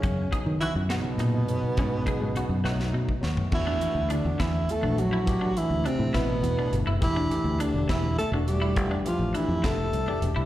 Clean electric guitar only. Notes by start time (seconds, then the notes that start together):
0.04 C#4
0.32 G#4
0.62 F#4
0.91 F#4
1.20 D#4
1.79 C#4
2.08 G#4
2.37 F#4
2.65 F#4
2.94 D#4
3.67 D4
4.10 D4
4.40 E4
4.83 D4
5.13 E4
5.41 D4
5.85 D4
6.14 E4
6.59 D4
6.87 E4
7.16 D4
7.60 D4
7.89 E4
8.34 D4
8.62 E4
8.91 D4
9.34 D4
9.64 E4
10.08 D4
10.36 E4